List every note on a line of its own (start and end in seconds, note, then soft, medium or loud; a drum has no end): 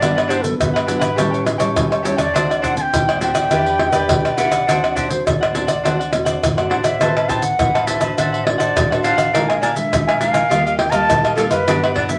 0.00 0.51 G1 medium
0.00 0.58 G2 soft
0.00 0.41 F#3 soft
0.00 0.42 B3 medium
0.00 0.14 D4 medium
0.00 0.42 D4 medium
0.00 0.15 G4 medium
0.00 0.15 B4 medium
0.00 0.31 D5 medium
0.00 0.14 F#5 medium
0.00 pandeiro medium
0.00 tamborim medium
0.00 shaker medium
0.00 surdo medium
0.15 0.27 G4 soft
0.15 0.28 B4 soft
0.15 0.28 F#5 soft
0.15 pandeiro soft
0.15 tamborim medium
0.15 shaker soft
0.28 0.41 D4 medium
0.28 0.41 G4 medium
0.28 0.41 B4 medium
0.28 0.44 C5 medium
0.28 0.41 F#5 medium
0.28 pandeiro medium
0.28 shaker medium
0.42 0.84 F#3 medium
0.42 0.84 B3 medium
0.42 0.84 D4 medium
0.42 0.59 A4 medium
0.42 muted cavaquinho stroke soft
0.42 pandeiro medium
0.42 shaker medium
0.59 0.97 G1 medium
0.59 1.16 D3 medium
0.59 1.72 B4 medium
0.59 pandeiro medium
0.59 tamborim medium
0.59 shaker medium
0.59 surdo medium
0.74 0.85 G4 soft
0.74 0.86 B4 soft
0.74 0.87 F#5 soft
0.74 pandeiro soft
0.74 tamborim medium
0.74 shaker soft
0.86 1.06 F#3 medium
0.86 1.06 B3 medium
0.86 1.01 D4 soft
0.86 1.06 D4 medium
0.86 1.00 G4 soft
0.86 0.99 B4 soft
0.86 0.98 F#5 medium
0.86 pandeiro medium
0.86 shaker medium
0.99 1.15 G#1 medium
0.99 1.15 G4 medium
0.99 1.16 B4 medium
0.99 1.15 F#5 medium
0.99 pandeiro medium
0.99 tamborim medium
0.99 shaker medium
1.16 1.55 A1 medium
1.16 1.74 A2 medium
1.16 1.46 G3 medium
1.16 1.46 C#4 medium
1.16 1.46 E4 medium
1.16 1.31 G4 medium
1.16 1.31 A4 medium
1.16 1.31 C#5 medium
1.16 1.30 G5 medium
1.16 pandeiro medium
1.16 tamborim medium
1.16 shaker medium
1.16 surdo medium
1.31 1.44 A4 soft
1.31 1.44 C#5 soft
1.31 1.44 G5 soft
1.31 pandeiro soft
1.31 shaker soft
1.45 muted cavaquinho stroke soft
1.45 pandeiro medium
1.45 tamborim medium
1.45 shaker medium
1.58 1.77 A1 medium
1.58 2.00 G3 medium
1.58 2.00 C#4 medium
1.58 2.00 E4 medium
1.58 1.89 A4 soft
1.58 1.89 C#5 medium
1.58 1.88 G5 medium
1.58 pandeiro medium
1.58 tamborim medium
1.58 shaker medium
1.76 2.14 E2 medium
1.76 2.32 E3 medium
1.76 pandeiro medium
1.76 tamborim medium
1.76 shaker medium
1.76 surdo medium
1.90 2.02 A4 soft
1.90 2.03 C#5 soft
1.90 2.03 G5 soft
1.90 pandeiro soft
1.90 tamborim medium
1.90 shaker soft
2.03 2.22 G3 medium
2.03 2.23 C#4 medium
2.03 2.23 E4 medium
2.03 2.18 G4 medium
2.03 2.17 A4 medium
2.03 2.17 C#5 medium
2.03 2.18 C#5 medium
2.03 2.16 G5 medium
2.03 pandeiro medium
2.03 shaker medium
2.17 2.35 E2 medium
2.17 2.33 A4 soft
2.17 2.33 C#5 soft
2.17 2.65 D5 medium
2.17 2.32 G5 medium
2.17 pandeiro medium
2.17 tamborim medium
2.17 shaker medium
2.33 2.85 D2 medium
2.33 2.90 D3 soft
2.33 2.62 A3 medium
2.33 2.62 C4 soft
2.33 2.48 D4 medium
2.33 2.63 F#4 medium
2.33 2.48 C5 medium
2.33 2.48 D5 medium
2.33 2.48 F#5 medium
2.33 pandeiro medium
2.33 tamborim medium
2.33 shaker medium
2.33 surdo medium
2.49 2.61 C5 soft
2.49 2.62 D5 soft
2.49 2.62 F#5 soft
2.49 pandeiro soft
2.49 tamborim medium
2.49 shaker soft
2.62 2.75 D4 medium
2.62 2.75 C5 medium
2.62 2.75 D5 medium
2.62 2.76 F#5 medium
2.62 pandeiro medium
2.62 shaker medium
2.62 surdo medium
2.75 3.16 A3 medium
2.75 3.16 C4 medium
2.75 2.83 A5 medium
2.75 muted cavaquinho stroke soft
2.75 pandeiro medium
2.75 shaker medium
2.82 3.19 G5 loud
2.93 3.31 D2 loud
2.93 3.48 A2 medium
2.93 pandeiro medium
2.93 tamborim medium
2.93 shaker medium
2.93 surdo medium
3.08 3.20 C5 soft
3.08 3.21 D5 soft
3.08 3.21 F#5 soft
3.08 pandeiro soft
3.08 tamborim medium
3.08 shaker soft
3.20 3.46 A3 medium
3.20 3.46 C4 medium
3.20 3.35 D4 medium
3.20 3.47 F#4 medium
3.20 3.35 C5 soft
3.20 3.34 D5 medium
3.20 3.33 F#5 soft
3.20 4.39 G5 loud
3.20 pandeiro medium
3.20 shaker medium
3.34 3.48 D2 medium
3.34 3.50 C5 medium
3.34 3.50 D5 medium
3.34 3.49 F#5 medium
3.34 pandeiro medium
3.34 tamborim medium
3.34 shaker medium
3.51 3.89 E2 medium
3.51 4.07 E3 medium
3.51 3.90 D4 medium
3.51 3.65 E4 medium
3.51 3.65 G4 medium
3.51 3.90 G4 medium
3.51 3.91 B4 medium
3.51 3.65 B4 medium
3.51 3.65 D5 medium
3.51 pandeiro medium
3.51 tamborim medium
3.51 shaker medium
3.51 surdo medium
3.66 3.79 G4 soft
3.66 3.79 B4 soft
3.66 3.80 D5 soft
3.66 pandeiro soft
3.66 shaker soft
3.79 pandeiro medium
3.79 tamborim medium
3.92 4.11 E2 medium
3.92 4.33 D4 medium
3.92 4.33 G4 medium
3.92 4.23 G4 medium
3.92 4.22 B4 medium
3.92 4.33 B4 medium
3.92 4.22 D5 medium
3.92 pandeiro medium
3.92 tamborim medium
3.92 shaker medium
4.09 4.47 B1 medium
4.09 4.65 B2 medium
4.09 pandeiro medium
4.09 tamborim medium
4.09 shaker medium
4.09 surdo loud
4.24 4.36 G4 soft
4.24 4.37 B4 soft
4.24 4.37 D5 soft
4.24 pandeiro soft
4.24 tamborim medium
4.24 shaker soft
4.37 4.63 D4 medium
4.37 4.51 E4 medium
4.37 4.51 G4 medium
4.37 4.63 G4 soft
4.37 4.63 B4 medium
4.37 4.50 B4 medium
4.37 4.49 D5 medium
4.37 4.93 F#5 loud
4.37 pandeiro medium
4.37 shaker medium
4.50 4.68 B1 medium
4.50 4.66 G4 soft
4.50 4.66 B4 soft
4.50 4.65 D5 soft
4.50 pandeiro medium
4.50 tamborim medium
4.50 shaker medium
4.67 5.18 D2 medium
4.67 5.24 D3 medium
4.67 5.08 A3 soft
4.67 5.08 C4 medium
4.67 4.81 D4 medium
4.67 5.08 F#4 medium
4.67 4.81 C5 medium
4.67 4.82 D5 medium
4.67 4.82 F#5 medium
4.67 pandeiro medium
4.67 tamborim medium
4.67 shaker medium
4.67 surdo medium
4.83 4.95 C5 soft
4.83 4.95 D5 soft
4.83 4.96 F#5 soft
4.83 pandeiro soft
4.83 tamborim medium
4.83 shaker soft
4.93 5.08 D4 medium
4.93 5.08 C5 medium
4.93 5.09 D5 medium
4.93 5.10 E5 medium
4.93 4.96 F#5 medium
4.93 5.09 F#5 medium
4.93 pandeiro medium
4.93 shaker medium
4.93 surdo medium
5.09 5.50 A3 medium
5.09 5.50 C4 medium
5.09 5.50 F#4 medium
5.09 5.27 C5 medium
5.09 muted cavaquinho stroke soft
5.09 pandeiro medium
5.09 shaker medium
5.26 5.64 D2 medium
5.26 5.82 A2 medium
5.26 6.43 D5 medium
5.26 pandeiro medium
5.26 tamborim medium
5.26 shaker medium
5.26 surdo medium
5.41 5.54 C5 soft
5.41 5.54 D5 soft
5.41 5.54 F#5 soft
5.41 pandeiro soft
5.41 tamborim medium
5.41 shaker soft
5.54 5.73 A3 medium
5.54 5.73 C4 medium
5.54 5.68 D4 medium
5.54 5.73 F#4 medium
5.54 5.68 C5 soft
5.54 5.66 D5 soft
5.54 5.66 F#5 medium
5.54 pandeiro medium
5.54 shaker medium
5.67 5.81 D2 medium
5.67 5.83 C5 soft
5.67 5.82 D5 medium
5.67 5.82 F#5 medium
5.67 pandeiro medium
5.67 tamborim medium
5.67 shaker medium
5.83 6.10 D2 medium
5.83 6.41 D3 medium
5.83 6.02 A3 medium
5.83 6.03 C4 medium
5.83 5.97 D4 medium
5.83 6.03 F#4 medium
5.83 5.98 C5 medium
5.83 5.98 D5 medium
5.83 5.98 F#5 medium
5.83 pandeiro medium
5.83 tamborim medium
5.83 shaker medium
5.83 surdo medium
5.99 6.11 C5 soft
5.99 6.11 D5 soft
5.99 6.12 F#5 soft
5.99 pandeiro soft
5.99 shaker soft
6.11 6.39 E1 medium
6.11 6.41 A3 medium
6.11 6.41 C4 medium
6.11 6.42 F#4 medium
6.11 muted cavaquinho stroke soft
6.11 pandeiro medium
6.11 tamborim medium
6.11 shaker medium
6.25 6.55 C5 soft
6.25 6.55 D5 medium
6.25 6.55 F#5 medium
6.25 pandeiro medium
6.25 tamborim medium
6.25 shaker medium
6.42 6.69 F#1 medium
6.42 6.99 A2 medium
6.42 pandeiro medium
6.42 tamborim medium
6.42 shaker medium
6.42 surdo medium
6.57 6.97 A3 medium
6.57 6.97 C4 medium
6.57 6.98 F#4 medium
6.57 6.70 C5 soft
6.57 6.70 D5 soft
6.57 6.71 F#5 soft
6.57 pandeiro soft
6.57 tamborim medium
6.57 shaker soft
6.70 6.98 A1 medium
6.70 6.84 D4 medium
6.70 6.84 C5 medium
6.70 6.84 D5 medium
6.70 6.76 F#5 medium
6.70 6.82 F#5 medium
6.70 pandeiro medium
6.84 6.99 C5 soft
6.84 6.99 D5 soft
6.84 7.30 E5 medium
6.84 6.99 F#5 soft
6.84 pandeiro medium
6.84 tamborim medium
6.84 shaker medium
7.00 7.51 A1 medium
7.00 7.57 A3 medium
7.00 7.55 C4 medium
7.00 7.56 E4 medium
7.00 7.14 A4 medium
7.00 7.15 B4 medium
7.00 7.56 B4 medium
7.00 7.15 C5 medium
7.00 7.15 A5 medium
7.00 pandeiro medium
7.00 tamborim medium
7.00 shaker medium
7.00 surdo medium
7.17 7.28 B4 soft
7.17 7.28 C5 soft
7.17 7.29 A5 soft
7.17 pandeiro soft
7.17 tamborim medium
7.17 shaker soft
7.28 7.41 A4 medium
7.28 7.42 B4 medium
7.28 7.41 C5 medium
7.28 7.43 G5 medium
7.28 7.42 A5 medium
7.28 pandeiro medium
7.28 shaker medium
7.28 surdo medium
7.42 7.88 F#5 medium
7.42 muted cavaquinho stroke soft
7.42 pandeiro medium
7.42 shaker medium
7.59 7.97 A1 loud
7.59 8.15 E3 medium
7.59 7.87 C4 medium
7.59 7.87 E4 medium
7.59 7.88 B4 medium
7.59 pandeiro medium
7.59 tamborim medium
7.59 shaker medium
7.59 surdo loud
7.75 7.87 B4 soft
7.75 7.86 C5 soft
7.75 7.88 A5 soft
7.75 pandeiro soft
7.75 tamborim medium
7.75 shaker soft
7.86 8.01 A4 soft
7.86 8.00 B4 medium
7.86 8.01 C5 soft
7.86 8.16 E5 medium
7.86 7.99 A5 medium
7.86 pandeiro medium
7.86 shaker medium
8.00 8.14 A1 medium
8.00 8.41 D4 medium
8.00 8.42 F#4 medium
8.00 8.15 B4 medium
8.00 8.16 C5 soft
8.00 8.42 C5 medium
8.00 8.15 A5 medium
8.00 pandeiro medium
8.00 tamborim medium
8.00 shaker medium
8.16 8.55 A1 medium
8.16 8.74 A3 medium
8.16 8.31 D4 medium
8.16 8.31 A4 medium
8.16 8.32 C5 medium
8.16 8.46 E5 medium
8.16 8.21 F5 medium
8.16 8.31 F#5 medium
8.16 pandeiro medium
8.16 tamborim medium
8.16 shaker medium
8.16 surdo medium
8.32 8.45 A4 soft
8.32 8.45 C5 soft
8.32 8.45 F#5 medium
8.32 pandeiro soft
8.32 shaker soft
8.45 8.86 D4 soft
8.45 8.86 F#4 medium
8.45 8.86 C5 medium
8.45 9.02 D5 medium
8.45 muted cavaquinho stroke soft
8.45 pandeiro medium
8.45 tamborim medium
8.58 8.73 A1 medium
8.58 8.89 A4 medium
8.58 8.88 C5 medium
8.58 8.88 F#5 medium
8.58 pandeiro medium
8.58 tamborim medium
8.58 shaker medium
8.76 9.13 A1 medium
8.76 9.32 A3 medium
8.76 pandeiro medium
8.76 tamborim medium
8.76 shaker medium
8.76 surdo loud
8.90 9.30 D4 medium
8.90 9.30 F#4 medium
8.90 9.03 A4 soft
8.90 9.03 C5 soft
8.90 9.31 C5 medium
8.90 9.04 F#5 soft
8.90 pandeiro soft
8.90 tamborim medium
8.90 shaker soft
9.03 9.18 D4 medium
9.03 9.17 A4 medium
9.03 9.16 C5 medium
9.03 9.58 F5 medium
9.03 9.16 F#5 medium
9.03 pandeiro medium
9.03 shaker medium
9.17 9.33 A1 medium
9.17 9.33 A4 soft
9.17 9.32 C5 soft
9.17 9.32 F#5 medium
9.17 pandeiro medium
9.17 tamborim medium
9.17 shaker medium
9.33 9.83 A#1 medium
9.33 9.90 A#2 medium
9.33 9.62 G#3 medium
9.33 9.47 D4 medium
9.33 9.62 D4 medium
9.33 9.62 F4 medium
9.33 9.48 A#4 medium
9.33 9.48 F5 medium
9.33 9.47 G#5 medium
9.33 pandeiro medium
9.33 tamborim medium
9.33 shaker medium
9.33 surdo medium
9.48 9.61 A#4 soft
9.48 9.61 F5 soft
9.48 9.62 G#5 soft
9.48 pandeiro soft
9.48 tamborim medium
9.48 shaker soft
9.60 9.74 D4 medium
9.60 9.74 A#4 medium
9.60 9.73 D5 medium
9.60 9.75 F5 medium
9.60 9.75 G#5 medium
9.60 pandeiro medium
9.60 shaker medium
9.74 10.17 G#3 medium
9.74 10.17 D4 medium
9.74 10.20 E5 medium
9.74 muted cavaquinho stroke soft
9.74 pandeiro medium
9.74 shaker medium
9.78 10.17 F4 medium
9.92 10.30 A#1 loud
9.92 10.49 F3 medium
9.92 pandeiro medium
9.92 tamborim medium
9.92 shaker medium
9.92 surdo medium
10.07 10.19 A#4 soft
10.07 10.20 F5 soft
10.07 10.20 G#5 soft
10.07 pandeiro soft
10.07 tamborim medium
10.07 shaker soft
10.19 10.39 G#3 medium
10.19 10.34 D4 soft
10.19 10.39 D4 medium
10.19 10.39 F4 medium
10.19 10.33 A#4 soft
10.19 10.77 F5 loud
10.19 10.33 F5 soft
10.19 10.32 G#5 medium
10.19 pandeiro medium
10.19 shaker medium
10.33 10.48 A#1 medium
10.33 10.49 A#4 medium
10.33 10.49 F5 medium
10.33 10.48 G#5 medium
10.33 pandeiro medium
10.33 tamborim medium
10.33 shaker medium
10.49 10.88 D#2 medium
10.49 11.06 D#3 medium
10.49 10.79 G3 medium
10.49 10.79 A#3 medium
10.49 10.64 F4 medium
10.49 10.79 F4 medium
10.49 10.64 G4 medium
10.49 10.64 D#5 medium
10.49 10.64 F5 medium
10.49 pandeiro medium
10.49 tamborim medium
10.49 shaker medium
10.49 surdo medium
10.65 10.77 G4 soft
10.65 10.77 D#5 soft
10.65 10.77 F5 soft
10.65 pandeiro soft
10.65 shaker soft
10.77 10.92 G5 loud
10.77 muted cavaquinho stroke soft
10.77 pandeiro medium
10.77 tamborim medium
10.90 11.11 D#2 medium
10.90 11.32 G3 medium
10.90 11.33 A#3 medium
10.90 11.33 F4 medium
10.90 11.22 G4 medium
10.90 11.21 D#5 medium
10.90 11.21 F5 medium
10.90 10.96 A#5 loud
10.90 pandeiro medium
10.90 tamborim medium
10.90 shaker medium
10.95 11.35 A5 loud
11.09 11.46 A#1 medium
11.09 11.65 A#2 medium
11.09 pandeiro medium
11.09 tamborim medium
11.09 shaker medium
11.09 surdo medium
11.24 11.36 G4 soft
11.24 11.37 D#5 soft
11.24 11.37 F5 soft
11.24 pandeiro soft
11.24 tamborim medium
11.24 shaker soft
11.35 11.62 G3 medium
11.35 11.62 A#3 medium
11.35 11.51 F4 medium
11.35 11.63 F4 medium
11.35 11.52 G4 medium
11.35 11.49 A4 medium
11.35 11.50 D#5 medium
11.35 11.50 F5 medium
11.35 pandeiro medium
11.35 shaker medium
11.49 11.68 F#2 medium
11.49 11.66 G4 soft
11.49 11.92 B4 loud
11.49 11.66 D#5 soft
11.49 11.66 F5 medium
11.49 pandeiro medium
11.49 tamborim medium
11.49 shaker medium
11.67 12.19 G2 medium
11.67 12.17 G2 medium
11.67 11.95 F#3 soft
11.67 11.95 B3 medium
11.67 11.81 D4 medium
11.67 11.95 D4 medium
11.67 11.82 G4 medium
11.67 11.82 B4 medium
11.67 11.82 F#5 medium
11.67 pandeiro medium
11.67 tamborim medium
11.67 shaker medium
11.67 surdo medium
11.84 11.96 G4 soft
11.84 11.96 B4 soft
11.84 11.96 F#5 soft
11.84 pandeiro soft
11.84 tamborim medium
11.84 shaker soft
11.94 12.10 D4 medium
11.94 12.10 G4 medium
11.94 12.11 B4 medium
11.94 12.08 D5 medium
11.94 pandeiro medium
11.94 surdo medium
11.98 12.10 F#5 medium
12.08 12.19 F#3 medium
12.08 12.19 B3 medium
12.08 12.19 D4 medium
12.08 12.19 E5 loud
12.08 muted cavaquinho stroke soft
12.08 pandeiro medium
12.08 shaker medium